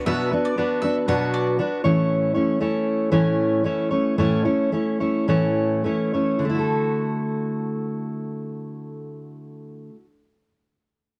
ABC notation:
X:1
M:4/4
L:1/16
Q:"Swing 16ths" 1/4=107
K:D
V:1 name="Mandolin"
e2 z d2 z e z f2 d z4 z | z16 | z16 | z16 |
z16 |]
V:2 name="Steel-string acoustic guitar"
[B,,F,B,DFB]2 [B,DFB]2 [B,DFB]2 [B,DFB]2 [B,,F,B,DFB]4 [B,DFB]2 [A,,E,A,CEc]2- | [A,,E,A,CEc]2 [A,CEc]2 [A,CEc]4 [A,,E,A,CEc]4 [A,CEc]2 [A,CEc]2 | [A,,E,A,CEc]2 [A,CEc]2 [A,CEc]2 [A,CEc]2 [A,,E,A,CEc]4 [A,CEc]2 [A,CEc]2 | [D,A,EFA]16- |
[D,A,EFA]16 |]